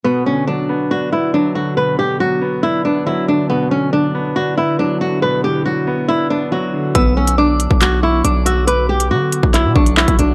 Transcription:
<<
  \new Staff \with { instrumentName = "Synth bell" } { \time 4/4 \key b \minor \tempo 4 = 139 r1 | r1 | r1 | r1 |
e'''4 d'''4. cis'''8 d'''8 e'''8 | d'''2~ d'''8 cis'''8 r4 | }
  \new Staff \with { instrumentName = "Nylon-string guitar" } { \time 4/4 \key b \minor b8 cis'8 d'4 fis'8 e'8 d'8 fis'8 | b'8 g'8 fis'4 e'8 d'8 e'8 d'8 | b8 cis'8 d'4 fis'8 e'8 d'8 fis'8 | b'8 g'8 fis'4 e'8 d'8 fis'4 |
b8 cis'8 d'4 fis'8 e'8 d'8 fis'8 | b'8 g'8 fis'4 e'8 d'8 e'8 d'8 | }
  \new Staff \with { instrumentName = "Analog synth pad" } { \time 4/4 \key b \minor << { fis'1~ | fis'1 | e'1~ | e'1 |
fis'1~ | fis'1 | } \\ { <d fis b>1~ | <d fis b>1~ | <d fis b>1~ | <d fis b>1 |
<d fis b>1~ | <d fis b>1 | } >> }
  \new Staff \with { instrumentName = "Grand piano" } { \clef bass \time 4/4 \key b \minor b,8 d8 fis8 b8 d'8 b8 fis8 d8 | b,8 d8 fis8 b8 d'8 b8 fis8 d8 | b,8 d8 fis8 b8 d'8 b8 fis8 d8 | b,8 d8 fis8 b8 d'8 b8 fis8 d8 |
r1 | r1 | }
  \new Staff \with { instrumentName = "808-style bass" } { \clef bass \time 4/4 \key b \minor r1 | r1 | r1 | r1 |
b,,4.~ b,,16 b,,4~ b,,16 b,,4~ | b,,4 d8. b,,8 b,16 b,,8. b,,16 b,,8 | }
  \new DrumStaff \with { instrumentName = "Drums" } \drummode { \time 4/4 r4 r4 r4 r4 | r4 r4 r4 r4 | r4 r4 r4 r4 | r4 r4 r4 r4 |
<hh bd>8. hh16 r8 hh16 bd16 <hc hh>4 hh8 hh8 | hh8. hh16 r8 hh16 bd16 <hc hh>8 bd16 hh16 hc16 <hh bd>16 hh8 | }
>>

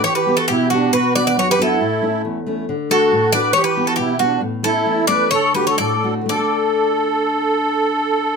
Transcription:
<<
  \new Staff \with { instrumentName = "Bouzouki" } { \time 2/4 \key d \major \tempo 4 = 136 cis''16 b'8 a'16 g'8 fis'8 | b'8 d''16 d''16 cis''16 b'16 a'8~ | a'4 r4 | r8 a'4 d''8 |
cis''16 b'8 a'16 g'8 fis'8 | r8 a'4 d''8 | cis''8 b'16 cis''16 d''8. r16 | d''2~ |
d''2 | }
  \new Staff \with { instrumentName = "Accordion" } { \time 2/4 \key d \major g'16 g'8 fis'16 e'8 d'8 | fis'8 b'16 b'16 fis'16 g'16 e'8~ | e'4 r4 | r8 fis'4 b'8 |
g'16 g'8 fis'16 e'8 d'8 | r8 e'4 b'8 | a'8 g'16 a'16 a'8. r16 | a'2~ |
a'2 | }
  \new Staff \with { instrumentName = "Steel-string acoustic guitar" } { \time 2/4 \key d \major e8 <b e' g'>8 b,8 <b e' g'>8 | b,8 <b d' fis'>8 fis,8 <b d' fis'>8 | a,8 <a cis' e'>8 e,8 <a cis' e'>8 | d8 <a d' fis'>8 a,8 <a d' fis'>8 |
e8 <b e' g'>8 b,8 <b e' g'>8 | a,8 <a cis' e'>8 e,8 <a cis' e'>8 | d8 <a d' fis'>8 a,8 <a d' fis'>8 | <d a d' fis' a'>2~ |
<d a d' fis' a'>2 | }
>>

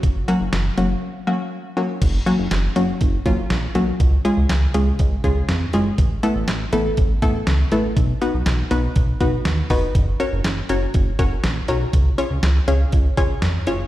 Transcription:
<<
  \new Staff \with { instrumentName = "Synth pluck" } { \time 4/4 \key ges \major \tempo 4 = 121 r8 <ges bes des' ges'>8 r8 <ges bes des' ges'>8 r8 <ges bes des' ges'>8 r8 <ges bes des' ges'>8 | r8 <ges bes des' ges'>8 r8 <ges bes des' ges'>8 r8 <ges bes des' f'>8 r8 <ges bes des' ges'>8 | r8 <aes des' f' aes'>8 r8 <aes des' f' aes'>8 r8 <aes des' f' aes'>8 r8 <aes des' f' aes'>8 | r8 <a b e' a'>8 r8 <a b e' a'>8 r8 <a b e' a'>8 r8 <a b e' a'>8 |
r8 <ces' ees' ges' ces''>8 r8 <ces' ees' ges' ces''>8 r8 <ces' ees' ges' ces''>8 r8 <ces' ees' ges' ces''>8 | r8 <des' ges' bes' des''>8 r8 <des' ges' bes' des''>8 r8 <des' ges' bes' des''>8 r8 <des' ges' bes' des''>8 | r8 <des' f' aes' des''>8 r8 <des' f' aes' des''>8 r8 <des' f' aes' des''>8 r8 <des' f' aes' des''>8 | }
  \new Staff \with { instrumentName = "Analog synth bass" } { \clef bass \time 4/4 \key ges \major ges,,8 r16 ges,,16 ges,,8 ges,,8 r2 | ges,,8 r16 ges,,16 ges,,8 ges,,8 ges,,8 ges,,8 bes,,8 ces,8 | des,8 r16 des,16 des,8 des,8 des,8 des,8 f,8 ges,,8 | a,,8 r16 a,,16 a,,8 a,,8 a,,8 a,,8 des,8 a,,8 |
ces,8 r16 ces,16 ces,8 ces,8 ces,8 ces,8 ees,8 f,,8 | ges,,8 r16 ges,,16 ges,,8 ges,,8 ges,,8 ges,,8 bes,,8 ces,8 | des,8 r16 des,16 des,8 des,8 des,8 des,8 f,8 ges,,8 | }
  \new DrumStaff \with { instrumentName = "Drums" } \drummode { \time 4/4 <hh bd>8 hh8 <hh sn>8 hh8 r4 r4 | <cymc hh bd>8 hh8 <hh sn>8 hh8 <hh bd>8 <hh bd>8 <hh sn>8 hh8 | <hh bd>8 hh8 <hh sn>8 hh8 <hh bd>8 <hh bd>8 <hh sn>8 hh8 | <hh bd>8 hh8 <hh sn>8 hh8 <hh bd>8 <hh bd>8 <hh sn>8 hh8 |
<hh bd>8 hh8 <hh sn>8 hh8 <hh bd>8 <hh bd>8 <hh sn>8 <hho bd>8 | <hh bd>8 hh8 <hh sn>8 hh8 <hh bd>8 <hh bd>8 <hh sn>8 hh8 | <hh bd>8 hh8 <hh sn>8 hh8 <hh bd>8 <hh bd>8 <hh sn>8 hh8 | }
>>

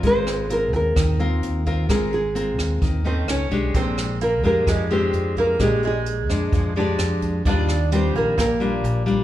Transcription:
<<
  \new Staff \with { instrumentName = "Nylon-string guitar" } { \time 4/4 \key bes \major \tempo 4 = 130 c''4 bes'8 bes'2~ bes'8 | aes'8 aes'2 c''8 cis''4 | c''4 bes'8 bes'8 aes'8 c''4 bes'8 | aes'8 aes'2 d''4 r8 |
d''4 c''8 bes'8 bes'2 | }
  \new Staff \with { instrumentName = "Nylon-string guitar" } { \time 4/4 \key bes \major << { <c' f' bes'>4 <c' f' bes'>4. <c' f' bes'>4 <c' f' bes'>8 | <c' f' bes'>8 r8 <c' f' bes'>4. <a des' ees'>4 <aes d' g'>8~ | <aes d' g'>4 r8 <aes d' g'>4 <aes d' g'>4. | <aes d' g'>4 r8 <aes d'>4 <aes d' g'>4. |
<g d' f'>8 r8 <g d' f'>4 r8 <g d' f'>4 <g d' f'>8 | } \\ { aes2 ees2 | aes2 ees4 r4 | bes,2 f2 | bes,2 f2 |
ees2 bes,2 | } >> }
  \new Staff \with { instrumentName = "Resonator guitar played with a steel bar" } { \time 4/4 \key bes \major r1 | r2 r8 c'8 cis'4 | c'4 bes8 bes8 aes8 c'4 bes8 | aes8 aes2 d'4 r8 |
d'4 c'8 bes8 bes2 | }
  \new Staff \with { instrumentName = "Fingered electric bass" } { \clef bass \time 4/4 \key bes \major aes,,4. ees,8 ees,4 ees,4 | aes,,4. ees,8 ees,4 cis,8 b,,8 | bes,,4. f,8 f,4 f,4 | bes,,4. f,8 f,4 f,4 |
ees,4. bes,,8 bes,,4 bes,,4 | }
  \new DrumStaff \with { instrumentName = "Drums" } \drummode { \time 4/4 <hh bd>8 <hh ss>8 hh8 <hh bd>8 <hh bd ss>8 hh8 hh8 <hh bd>8 | <hh bd ss>8 hh8 hh8 <hh bd ss>8 <hh bd>8 hh8 <hh ss>8 <hh bd>8 | <hh bd>8 <hh ss>8 hh8 <hh bd>8 <hh bd ss>8 hh8 hh8 <hh bd>8 | <hh bd ss>8 hh8 hh8 <hh bd ss>8 <hh bd>8 hh8 <hh ss>8 <hh bd>8 |
<hh bd>8 <hh ss>8 hh8 <hh bd>8 <hh bd ss>8 hh8 hh8 <hh bd>8 | }
>>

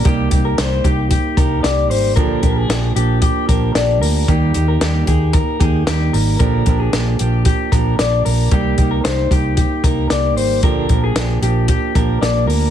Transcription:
<<
  \new Staff \with { instrumentName = "Clean electric guitar" } { \time 4/4 \key bes \mixolydian \tempo 4 = 113 g'8. bes'16 c''8 g'8 g'8 bes'8 d''8 c''8 | bes'8. aes'8. g'8 g'8 bes'8 d''8 bes'8 | g'8. bes'16 g'8 aes'8 bes'8 aes'8 g'8 bes'8 | bes'8. aes'8. g'8 g'8 bes'8 d''8 bes'8 |
g'8. bes'16 c''8 g'8 g'8 bes'8 d''8 c''8 | bes'8. aes'8. g'8 g'8 bes'8 d''8 bes'8 | }
  \new Staff \with { instrumentName = "Steel-string acoustic guitar" } { \time 4/4 \key bes \mixolydian <c g bes ees' g'>8 <bes ees' g'>8 <g bes ees' g'>8 <bes ees' g'>4 <bes ees' g'>8 <g bes ees' g'>4 | <bes, d f bes d' g'>8 <f bes d' g'>8 <f bes d' g'>8 <f bes d' g'>4 <f bes d' g'>8 <f bes d' g'>4 | <ees g bes ees' g'>8 <bes ees' g'>8 <g bes ees' g'>8 <bes ees' g'>4 <bes ees' g'>8 <g bes ees' g'>4 | <bes, d f bes d' g'>8 <f bes d' g'>8 <f bes d' g'>8 <f bes d' g'>4 <f bes d' g'>8 <f bes d' g'>4 |
<c g bes ees' g'>8 <bes ees' g'>8 <g bes ees' g'>8 <bes ees' g'>4 <bes ees' g'>8 <g bes ees' g'>4 | <bes, d f bes d' g'>8 <f bes d' g'>8 <f bes d' g'>8 <f bes d' g'>4 <f bes d' g'>8 <f bes d' g'>4 | }
  \new Staff \with { instrumentName = "Fingered electric bass" } { \clef bass \time 4/4 \key bes \mixolydian c,8 c,8 c,8 c,8. r16 c,8 c,8 aes,,8 | bes,,8 bes,,8 bes,,8 bes,,8. r16 bes,,8 bes,,8 d,8 | ees,8 ees,8 ees,8 ees,8. r16 ees,8 ees,8 aes,,8 | bes,,8 bes,,8 bes,,8 bes,,8. r16 bes,,8 bes,,8 bes,,8 |
c,8 c,8 c,8 c,8. r16 c,8 c,8 aes,,8 | bes,,8 bes,,8 bes,,8 bes,,8. r16 bes,,8 bes,,8 d,8 | }
  \new DrumStaff \with { instrumentName = "Drums" } \drummode { \time 4/4 <hh bd>8 <hh bd>8 <hh sn>8 <hh bd>8 <hh bd>8 <hh bd>8 <hh sn>8 hho8 | <hh bd>8 <hh bd>8 <hh sn>8 hh8 <hh bd>8 <hh bd>8 <hh sn>8 hho8 | <hh bd>8 hh8 <hh sn>8 <hh bd>8 <hh bd>8 <hh bd>8 <hh sn>8 hho8 | <hh bd>8 <hh bd>8 <hh sn>8 hh8 <hh bd>8 <hh bd>8 <hh sn>8 hho8 |
<hh bd>8 <hh bd>8 <hh sn>8 <hh bd>8 <hh bd>8 <hh bd>8 <hh sn>8 hho8 | <hh bd>8 <hh bd>8 <hh sn>8 hh8 <hh bd>8 <hh bd>8 <hh sn>8 hho8 | }
>>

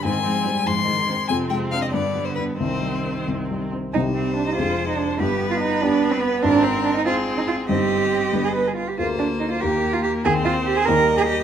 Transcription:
<<
  \new Staff \with { instrumentName = "Violin" } { \time 6/8 \key c \minor \tempo 4. = 95 aes''4. c'''4. | aes''8 g''8 f''16 ees''16 d''8. c''16 b'8 | c''4. r4. | c''2. |
b'2. | bes'4. aes'4. | ees''2~ ees''16 r8. | \key ees \major c''4. bes'4. |
c''4. ees''4. | }
  \new Staff \with { instrumentName = "Cello" } { \time 6/8 \key c \minor ees8 f8 g8 f8 ees8 ees8 | c4. d4. | ees2~ ees8 r8 | ees'8 c'8 d'16 ees'16 f'8. ees'16 d'8 |
g'8. f'16 ees'8 d'8. c'16 b8 | d'8 c'8 d'16 ees'16 f'8. ees'16 f'8 | g'4.~ g'16 aes'16 b'16 aes'16 f'16 g'16 | \key ees \major f'8 d'8 ees'16 f'16 g'8. f'16 g'8 |
aes'8 f'8 g'16 aes'16 bes'8. aes'16 g'8 | }
  \new Staff \with { instrumentName = "Viola" } { \time 6/8 \key c \minor c'4. aes4. | c'4. b4. | c'2~ c'8 r8 | g4. aes4. |
b2. | c'4. c'4. | c'4. b4 r8 | \key ees \major bes4. bes4. |
c'4. g4. | }
  \new Staff \with { instrumentName = "Grand piano" } { \time 6/8 \key c \minor aes,8 aes8 c'8 aes,8 aes8 c'8 | f,8 aes8 <c' d'>8 g,8 g8 <b d'>8 | c,8 g8 c'8 c,8 g8 c'8 | <c, c g c' ees'>4. <f,, f, aes d' aes'>4. |
<g,, g,>4. <b d' g'>4. | <aes,, aes,>4. <c' f' c''>4. | <g,, g, c' ees' c''>4. <g,, g, d' g' b'>4. | \key ees \major <d, d bes aes' bes'>4. <ees, ees bes g' bes'>4. |
<ees, ees c' ees' aes'>4. <ees, ees bes ees' g'>4. | }
>>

